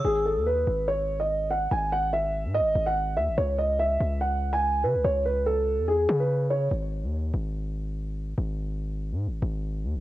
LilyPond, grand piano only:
\new Staff \with { instrumentName = "Grand piano" } { \time 4/4 \key gis \phrygian \tempo 4 = 144 gis'8 a'8 b'4 cis''8. dis''8. fis''8 | gis''8 fis''8 e''4 dis''8. fis''8. e''8 | cis''8 dis''8 e''4 fis''8. gis''8. b'8 | cis''8 b'8 a'4 gis'8. b'8. cis''8 |
r1 | r1 | }